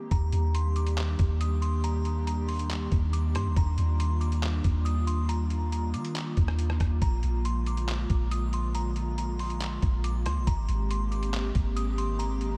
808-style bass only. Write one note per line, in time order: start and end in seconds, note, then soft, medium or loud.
0.11 0.32 D#2 loud
0.33 1.16 D#2 loud
1.19 2.88 D#2 loud
2.92 3.36 D#2 loud
3.35 3.47 G2 medium
3.46 3.56 D#2 loud
3.56 3.77 D#2 loud
3.78 4.61 D#2 loud
4.64 5.95 D#2 loud
5.94 6.35 D#3 loud
6.37 6.79 D#2 loud
6.80 7.01 D#2 loud
7.02 7.22 A#1 loud
7.23 8.06 A#1 loud
8.10 9.78 A#1 loud
9.83 10.27 A#1 loud
10.25 10.38 D2 loud
10.36 10.47 A#1 loud
10.47 10.68 G#1 loud
10.69 11.52 G#1 loud
11.55 12.57 G#1 loud